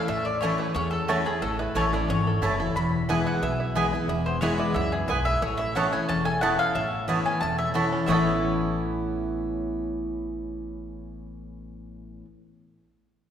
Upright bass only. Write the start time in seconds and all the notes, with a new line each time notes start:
0.08 A1
0.75 E2
1.42 A1
1.75 A1
2.08 G#1
2.42 F#1
2.75 E1
3.42 B1
4.08 E1
4.75 C#2
5.09 B1
5.42 A1
6.09 E1
6.75 A1
7.41 E1
8.08 A1